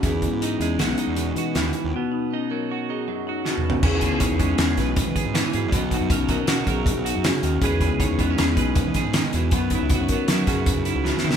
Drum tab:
CC |------------------------------|------------------------------|x-----------------------------|------------------------------|
HH |x--x--x--x--x--x--x--x--x--x--|------------------------------|---x--x--x--x--x--x--x--x--x--|x--x--x--x--x--x--x--x--x--x--|
SD |------------o-----------o-----|------------------------o-----|------------o--o--------o-----|------------o-----------o-----|
T2 |------------------------------|--------------------------o---|------------------------------|------------------------------|
FT |------------------------------|----------------------------o-|------------------------------|------------------------------|
BD |o--o--------------------------|------------------------------|o--o--o--o-----o--o--o--------|o--o--o--o-----o--o-----------|

CC |------------------------------|------------------------------|
HH |x--x--x--x--x--x--x--x--x--x--|x--x--x--x--x--x--x--x--------|
SD |------------o--------o--o-----|------------o--o--------o-o-o-|
T2 |------------------------------|------------------------------|
FT |------------------------------|------------------------------|
BD |o--o--o--o-----o--o--o--------|o--o--o--o-----o--o-----------|